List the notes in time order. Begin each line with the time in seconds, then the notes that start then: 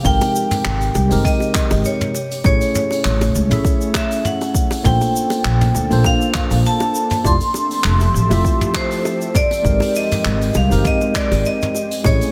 Already playing: C3 G4
0.03 G#1 G#3 C4 D#4 G4 A#4 G5, kick, shaker
0.21 open hi-hat, high bongo, shaker
0.36 shaker
0.51 mid tom, open hi-hat, shaker
0.65 G#1, clap, high bongo, shaker
0.81 open hi-hat, shaker
0.95 C2, high bongo, shaker
1.09 G#1 G#3 C4 D#4 G4 A#4, open hi-hat, shaker
1.25 D#5, kick, mid tom, shaker
1.40 high bongo, shaker
1.54 kick, clap, shaker
1.71 G#1, open hi-hat, high bongo, shaker
1.85 C#5, shaker
2.01 mid tom, shaker
2.15 A3 C#4, high bongo, shaker
2.31 open hi-hat, shaker
2.44 A1 A3 C#4 E4 G#4 C#5, kick, high bongo, shaker
2.61 open hi-hat, shaker
2.75 mid tom, shaker
2.91 open hi-hat, high bongo, shaker
3.05 A1, clap, shaker
3.21 open hi-hat, high bongo, shaker
3.35 C#2, shaker
3.49 A1 A3 C#4 E4 G#4 E5, mid tom, open hi-hat, shaker
3.65 kick, high bongo, shaker
3.81 shaker
3.94 E5, kick, clap, high bongo, shaker
4.11 open hi-hat, shaker
4.25 F#5, mid tom, shaker
4.41 open hi-hat, high bongo, shaker
4.54 kick, shaker
4.71 open hi-hat, high bongo, shaker
4.83 A#1 A#3 D4 F4 A4 C5 G5, kick, mid tom, shaker
5.01 open hi-hat, high bongo, shaker
5.16 shaker
5.30 open hi-hat, high bongo, shaker
5.44 A#1, clap, shaker
5.61 mid tom, open hi-hat, shaker
5.75 D2, high bongo, shaker
5.89 A#1 A#3 D4 F4 A4 C5, open hi-hat, shaker
6.04 F5, kick, high bongo, shaker
6.21 shaker
6.34 kick, clap, mid tom, shaker
6.50 A#1, open hi-hat, high bongo, shaker
6.66 A5, shaker
6.80 high bongo, shaker
6.95 shaker
7.10 mid tom, open hi-hat, shaker
7.24 F1 F3 A3 C4 E4 F4 G4 A4 D5 E5 C6, kick, high bongo, shaker
7.41 open hi-hat, shaker
7.54 high bongo, shaker
7.71 open hi-hat, shaker
7.84 F1, clap, mid tom, shaker
8.00 open hi-hat, high bongo, shaker
8.14 A1, shaker
8.29 F1 A3 E4 F4 G4 E5, open hi-hat, high bongo, shaker
8.45 kick, shaker
8.61 mid tom, shaker
8.74 C5, kick, clap, high bongo, shaker
8.91 open hi-hat, shaker
9.05 high bongo, shaker
9.21 shaker
9.35 G#3 C4 G4 D5, kick, mid tom, shaker
9.51 open hi-hat, high bongo, shaker
9.63 G#1 G#3 C4 D#4 G4 A#4, kick, shaker
9.80 open hi-hat, high bongo, shaker
9.95 D#5, shaker
10.11 mid tom, open hi-hat, shaker
10.25 G#1, clap, high bongo, shaker
10.41 open hi-hat, shaker
10.54 C2 F5, high bongo, shaker
10.68 G#1 G#3 C4 D#4 G4 A#4, open hi-hat, shaker
10.85 D#5, kick, mid tom, shaker
11.01 high bongo, shaker
11.15 D5, kick, clap, shaker
11.31 G#1, open hi-hat, high bongo, shaker
11.45 D#5, shaker
11.62 mid tom, shaker
11.75 A3 C#4 G#5, high bongo, shaker
11.91 open hi-hat, shaker
12.04 A1 A3 C#4 E4 G#4 C#5, kick, high bongo, shaker
12.21 open hi-hat, shaker